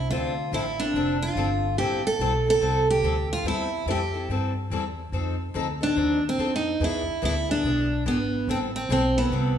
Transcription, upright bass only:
0.10 D2
0.52 A1
0.94 F1
1.35 G1
1.77 A1
2.19 B1
2.60 C2
3.02 D2
3.44 E2
3.86 F2
4.29 G2
4.70 E2
5.12 F2
5.55 D2
5.96 D#2
6.38 F2
6.80 E2
7.07 muted upright bass stroke
7.23 D2
7.64 B1
8.06 G#1
8.47 A1
8.89 B1
9.31 C2

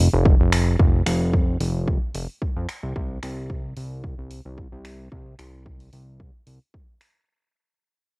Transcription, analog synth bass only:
0.13 F1
0.40 F1
0.80 F1
1.06 F1
1.60 F1
2.14 F1
2.56 F2
2.83 C2
2.96 C2
3.23 C2
3.77 C2
4.18 C2
4.45 C2
4.72 C2
5.12 C2
5.39 C2
5.93 C2
6.47 C2

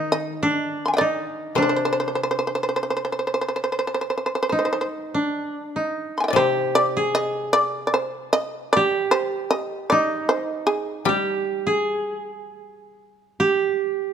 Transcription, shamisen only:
0.12 D#5
0.86 G#5 C6
0.94 D#5 G5
0.98 D5
1.56 C5
1.62 C5
1.69 C5
1.76 C5
1.85 C5
1.93 C5
2.00 C5
2.08 C5
2.15 C5
2.23 C5
2.31 C5
2.39 C5
2.47 C5
2.55 C5
2.63 C5
2.69 C5
2.76 C5
2.83 C5
2.90 C5
2.97 C5
3.05 C5
3.12 C5
3.19 C5
3.27 C5
3.34 C5
3.41 C5
3.48 C5
3.56 C5
3.64 C5
3.72 C5
3.79 C5
3.87 C5
3.94 C5
4.01 C5
4.10 C5
4.17 C5
4.26 C5
4.35 C5
4.43 C5
4.49 C5
4.59 C5
4.65 C5
4.73 C5
4.81 C5
6.18 G#5 C6
6.24 G5
6.28 D5 D#5
6.36 C5
6.75 D5
7.15 D#5
7.53 D5
7.87 D5
7.94 C5
8.33 D#5
8.73 D5
9.11 C5
9.51 D#5
9.90 D5
10.29 C5
10.67 G#4
11.06 G4

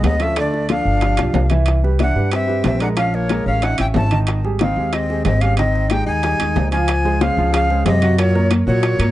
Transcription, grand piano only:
Already playing: G#3 G#4 B4
0.20 F3 F4 A4
0.37 D3 D4 D5
0.69 F3 F4 A4
1.02 F3 F4 G4
1.18 F3 F4 G4
1.50 E3 E4 E5
1.84 G3 G4 B4
2.00 E3 E4 E5
2.15 G3 G4 B4
2.47 G3 G4 B4
2.81 G#3 G#4 A#4
2.97 F3 F4 F5
3.30 G#3 G#4 A#4
3.62 C#4 C#5 E5
3.79 C#4 C#5 E5
4.12 D#3 D#4 D#5
4.44 G3 G4 G#4
4.61 D#3 D#4 D#5
4.77 G#3 G4 G#4
5.10 G#3 G4 G#4
5.42 G3 G4 G#4
5.59 D#3 D#4 D#5
5.91 G#3 G4 G#4
6.24 G3 G4 G#4
6.40 G#3 D#4 G#4
6.73 F3 F4 F5
7.05 G#3 G#4 C5
7.22 G#3 G#4 C5
7.38 F3 F4 F5
7.70 G#3 G#4 C5
8.03 F#3 F#4 F#5
8.18 F#3 F#4 F#5
8.35 A#3 A#4 C#5
8.68 F#3 F#4 F#5
9.01 A#3 A#4 C#5

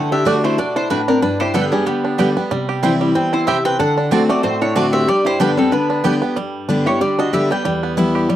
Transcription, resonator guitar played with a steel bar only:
Already playing: A4
0.12 G4
0.27 F#4
0.45 E4
0.58 F#4
0.76 E4
0.91 D4
1.08 C4
1.23 D4
1.41 E4
1.55 D4
1.73 B3
1.88 B3
3.16 C5
3.33 E4
3.48 G4
3.65 B4
3.79 A4
4.29 F#4
4.43 F#4
4.61 E4
4.76 F#4
4.93 G4
5.07 G4
5.25 E4
5.40 D4
5.57 C4
5.72 D4
6.86 E4
7.01 G4
7.19 F#4
7.33 G4
7.51 B4

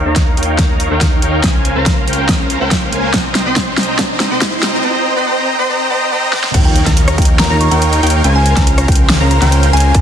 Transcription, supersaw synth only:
0.06 D#4 A#4 C#5 F5 A#5
0.37 D#4 A#4 C#5 F5 G5
0.69 D#4 A#4 C#5 F5 A#5
0.91 D#4 A#4 C#5 F5 G5
1.22 D#4 A#4 C#5 F5 G5
1.43 C#4 A#4 C5 F5 G#5
1.76 C#4 A#4 C5 F5 A#5
2.07 C#4 A#4 C5 F5 G5
2.39 C#4 A#4 C5 F5 A#5
2.61 C#4 A#4 C5 F5 G5
2.92 C#4 A#4 C5 F5 G#5
3.14 C4 C5 D#5 G5 A#5
3.46 C4 C5 D#5 G5 C6
3.77 C4 C5 D#5 G5 A#5
3.99 C4 C5 D#5 G5 A#5
4.31 C4 C5 D#5 G5 C6
4.63 C4 C5 D#5 G5 A#5
4.84 C4 C5 D#5 G5 A#5
5.16 C4 C5 D#5 G5 C6
5.26 C4 C5 D#5 G5 A#5
5.59 C4 C5 D#5 G5 C6
5.69 C4 C5 D#5 G5 A#5
5.90 C4 C5 D#5 G5 A#5
6.12 C4 C5 D#5 G5 A#5
6.33 C4 C5 D#5 G5 A#5
6.54 D#4 A#4 C#5 F5 G5
6.86 D#4 A#4 C#5 F5 A#5
7.18 D#4 A#4 C#5 F5 G5
7.50 D#4 A#4 C#5 F5 A#5
7.71 D#4 A#4 C#5 F5 G5
8.03 D#4 A#4 C#5 F5 G5
8.24 C#4 A#4 C5 F5 G#5
8.57 C#4 A#4 C5 F5 A#5
8.88 C#4 A#4 C5 F5 G5
9.20 C#4 A#4 C5 F5 A#5
9.42 C#4 A#4 C5 F5 G5
9.73 C#4 A#4 C5 F5 G#5
9.95 C4 C5 D#5 G5 A#5

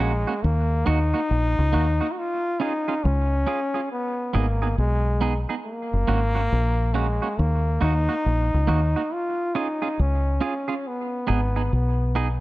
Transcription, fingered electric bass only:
Already playing: A#1
0.44 D#2
0.88 D#2
1.31 A#1
1.59 C#2
1.75 D#2
3.05 C#2
4.35 G#1
4.78 B1
5.93 F#1
6.09 G#1
6.52 A#1
7.39 D#2
7.82 D#2
8.26 A#1
8.54 C#2
8.69 D#2
9.99 C#2
11.30 G#1
11.73 B1

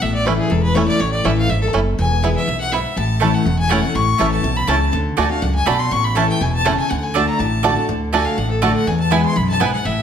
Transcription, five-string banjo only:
0.27 A3 C#4 E4
0.77 A3 C#4 E4
1.25 A3 C#4 E4
1.74 A3 C#4 E4
2.24 B3 E4
2.73 B3 E4
3.22 A3 C#4 E4
3.71 A3 C#4 E4
4.20 A3 C#4 E4
4.69 A3 C#4 E4
5.18 A3 D4 F#4
5.67 A3 D4 F#4
6.17 A3 C#4 E4
6.66 A3 C#4 E4
7.15 A3 D4 F#4
7.64 A3 D4 F#4
8.13 A3 D4 F#4
8.62 A3 D4 F#4
9.12 B3 E4
9.61 B3 E4

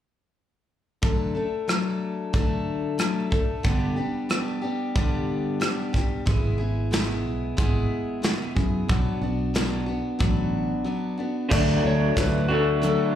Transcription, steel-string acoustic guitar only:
1.02 D3 F#3 A3 D4 A4
1.35 A3 D4 A4
1.68 F#3 A3 D4 A4
2.33 D3 F#3 A3 D4 A4
2.98 F#3 A3 D4 A4
3.31 A3 D4 A4
3.63 G2 D3 G3 B3 D4 G4
3.96 G3 B3 D4 G4
4.29 G3 B3 D4 G4
4.62 G3 B3 D4 G4
4.95 G2 D3 G3 B3 D4 G4
5.60 G3 B3 D4 G4
5.93 G3 B3 D4 G4
6.26 G#3 B3 E4 G#4
6.58 B3 E4 G#4
6.91 G#3 B3 E4 G#4
7.57 G#3 B3 E4 G#4
8.22 G#3 B3 E4 G#4
8.55 B3 E4 G#4
8.88 B2 F#3 B3 D4 F#4
9.21 B3 D4 F#4
9.54 F#3 B3 D4 F#4
9.86 B3 D4 F#4
10.19 B2 F#3 B3 D4 F#4
10.84 F#3 B3 D4 F#4
11.18 B3 D4 F#4
11.50 D3 F#3 A3 D4 F#4
12.16 F#3 A3 D4 F#4
12.48 A3 D4 F#4
12.82 D3 F#3 A3 D4 F#4

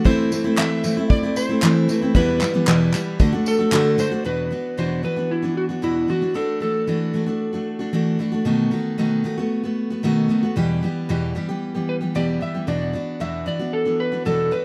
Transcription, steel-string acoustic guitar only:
0.04 E3 A3 C4 E4
0.31 E3 A3 C4 E4
0.44 A3 C4 E4
0.57 E3 A3 C4 E4
0.84 E3 A3 C4 E4
0.97 A3 C4 E4
1.23 A3 C4 E4
1.49 A3 C4 E4
1.63 E3 A3 C4 E4
1.88 E3 A3 C4 E4
2.02 A3 C4 E4
2.15 E2 B2 E3 G3 B3 E4
2.41 E3 G3 B3 E4
2.54 E3 G3 B3 E4
2.67 E2 B2 E3 G3 B3 E4
2.93 E3 G3 B3 E4
3.19 D3 A3 D4 F#4
3.32 A3 D4 F#4
3.59 A3 D4 F#4
3.72 D3 A3 D4 F#4
3.98 D3 A3 D4 F#4
4.11 A3 D4 F#4
4.24 E2 B2 E3 B3 D4 F#4
4.50 E3 B3 D4 F#4
4.77 E2 B2 E3 B3 D4 F#4
5.03 E3 B3 D4 F#4
5.16 E3 B3 D4 F#4
5.42 E3 B3 D4 F#4
5.69 E3 B3 D4 F#4
5.82 E2 B2 E3 B3 D4 F#4
6.08 E3 B3 D4 F#4
6.21 E3 B3 D4 F#4
6.34 E3 A3 D4 F#4
6.60 E3 A3 D4 F#4
6.87 E3 A3 D4 F#4
7.14 E3 A3 D4 F#4
7.26 A3 D4 F#4
7.53 A3 D4 F#4
7.79 A3 D4 F#4
7.93 E3 A3 D4 F#4
8.19 E3 A3 D4 F#4
8.32 A3 D4 F#4
8.45 B2 D#3 A3 B3 F#4
8.71 D#3 A3 B3 F#4
8.98 B2 D#3 A3 B3 F#4
9.24 D#3 A3 B3 F#4
9.38 A3 B3 F#4
9.63 A3 B3 F#4
9.90 A3 B3 F#4
10.03 B2 D#3 A3 B3 F#4
10.29 D#3 A3 B3 F#4
10.43 A3 B3 F#4
10.56 E2 B2 E3 G3 B3 G4
10.83 E3 G3 B3 G4
11.09 E2 B2 E3 G3 B3 G4
11.35 E3 G3 B3 G4
11.49 E3 G3 B3 G4
11.74 E3 G3 B3 G4
12.01 E3 G3 B3 G4
12.15 E2 B2 E3 G3 B3 G4
12.41 E3 G3 B3 G4
12.54 E3 G3 B3 G4
12.67 E2 B2 E3 B3 D4 F#4
12.93 E3 B3 D4 F#4
13.20 E2 B2 E3 B3 D4 F#4
13.46 E3 B3 D4 F#4
13.59 E3 B3 D4 F#4
13.85 E3 B3 D4 F#4
14.12 E3 B3 D4 F#4
14.25 E2 B2 E3 B3 D4 F#4
14.51 E3 B3 D4 F#4

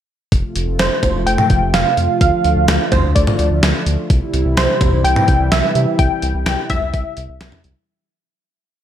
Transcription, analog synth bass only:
0.32 F1
0.56 F1
0.68 F1
0.79 F1
1.03 F1
1.15 F1
1.27 F1
1.50 F1
1.62 F1
1.74 F1
1.97 F2
2.21 D2
2.45 D2
2.56 D2
2.68 D2
2.92 D2
3.04 D2
3.16 D2
3.39 D2
3.51 D2
3.63 D2
3.86 D2
4.10 C2
4.34 C2
4.45 C2
4.57 C2
4.81 C2
4.93 C2
5.04 C2
5.28 C2
5.40 C2
5.52 C2
5.75 C3
5.99 C2
6.23 C2
6.34 C2
6.46 C2
6.70 C2
6.82 C2
6.94 C2
7.17 C2
7.29 C2
7.41 C2
7.64 C2

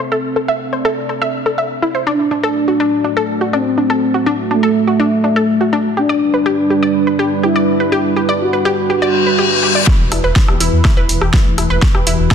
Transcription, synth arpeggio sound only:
0.12 A4
0.36 A4
0.48 E5
0.73 C5
0.85 A4
1.09 A4
1.22 E5
1.46 A4
1.58 E5
1.82 E4
1.95 C5
2.07 D4
2.31 D4
2.43 A4
2.68 F#4
2.80 D4
3.04 D4
3.17 A4
3.41 F#4
3.53 D4
3.78 D4
3.90 A4
4.14 F#4
4.26 D4
4.51 D4
4.63 A4
4.87 F#4
5.00 D4
5.24 D4
5.36 A4
5.61 F#4
5.73 D4
5.97 G4
6.09 D5
6.34 B4
6.46 G4
6.70 G4
6.83 D5
7.07 B4
7.19 G4
7.43 G4
7.56 D5
7.80 B4
7.92 G4
8.16 G4
8.29 D5
8.53 B4
8.65 G4
8.90 G4
9.02 D5
9.26 B4
9.39 G4
9.63 G4
9.75 D5
9.87 E4
10.12 E4
10.24 B4
10.48 G4
10.60 E4
10.85 E4
10.97 B4
11.21 G4
11.34 E4
11.58 E4
11.70 B4
11.95 G4
12.07 E4
12.31 E4

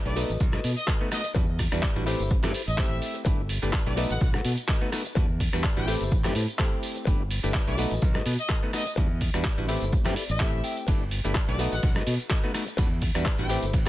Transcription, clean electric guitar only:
0.16 F#4 A4 B4 D#5
0.52 F#4 A4 B4 D#5
0.87 F#4 A4 B4 D#5
1.24 muted clean electric guitar stroke
1.35 muted clean electric guitar stroke
1.48 muted clean electric guitar stroke
1.82 E4 G4 B4 D5
2.06 E4 G4 A4 C5
2.43 E4 G4 A4 C5
2.77 E4 G4 A4 C5
3.14 muted clean electric guitar stroke
3.25 muted clean electric guitar stroke
3.38 muted clean electric guitar stroke
3.72 E4 G4 B4 D5
3.96 F#4 A4 B4 D#5
4.33 F#4 A4 B4 F#5
4.68 F#4 A4 B4 D#5
5.05 muted clean electric guitar stroke
5.15 muted clean electric guitar stroke
5.29 muted clean electric guitar stroke
5.63 E4 G4 B4 D5
5.87 E4 G4 A4 C5
6.24 E4 G4 A4 C5
6.58 E4 G4 A4 C5
6.95 muted clean electric guitar stroke
7.05 muted clean electric guitar stroke
7.19 muted clean electric guitar stroke
7.53 E4 G4 B4 D5
7.77 F#4 A4 B4 D#5
8.14 F#4 A4 B4 D#5
8.49 F#4 A4 B4 D#5
8.85 muted clean electric guitar stroke
8.96 muted clean electric guitar stroke
9.09 muted clean electric guitar stroke
9.44 E4 G4 B4 D5
9.68 E4 G4 A4 C5
10.04 E4 G4 A4 C5
10.16 D5
10.39 E4 G4 A4 C5 E5
10.64 G5
10.76 muted clean electric guitar stroke
10.87 muted clean electric guitar stroke
11.00 muted clean electric guitar stroke
11.34 E4 G4 B4 D5
11.58 F#4 A4 B4 D#5
11.95 F#4 A4 B4 D#5
12.30 F#4 A4 B4 D#5
12.66 muted clean electric guitar stroke
12.77 muted clean electric guitar stroke
12.90 muted clean electric guitar stroke
13.25 E4 G4 B4 D5
13.49 E4 G4 A4 C5
13.86 E4

